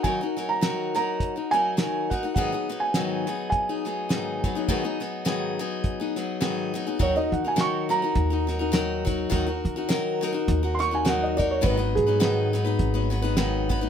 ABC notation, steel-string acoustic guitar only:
X:1
M:4/4
L:1/16
Q:"Swing" 1/4=104
K:D#phr
V:1 name="Steel-string acoustic guitar"
[D,F,DFA] [DFA] [F,DFA]2 [D,F,DFA]2 [F,DFA]3 [DFA] [F,DFA]2 [D,F,DFA]2 [F,DFA] [DFA] | [G,,D,F,B,DG] [F,B,DG] [F,B,DG]2 [G,,D,F,B,DG]2 [F,B,DG]3 [F,B,DG] [F,B,DG]2 [G,,D,F,B,DG]2 [F,B,DG] [F,B,DG] | [G,,D,F,B,DG] [F,B,DG] [F,B,DG]2 [G,,D,F,B,DG]2 [F,B,DG]3 [F,B,DG] [F,B,DG]2 [G,,D,F,B,DG]2 [F,B,DG] [F,B,DG] | [D,F,DFA] [DFA]2 [DFA] [D,F,DFA]2 [F,DFA] [DFA]2 [DFA] [F,DFA] [DFA] [D,F,DFA]2 [F,DFA]2 |
[D,F,DFA] [DFA]2 [DFA] [D,F,DFA]2 [F,DFA] [DFA]2 [DFA] [F,DFA] [DFA] [D,F,DFA]2 [F,DFA]2 | [G,,D,F,B,DB] [F,B,DB]2 [F,B,DB] [G,,D,F,B,DB]2 [F,B,DB] [F,B,DB]2 [F,B,DB] [F,B,DB] [F,B,DB] [G,,D,F,B,DB]2 [F,B,DB] [F,B,DB] |]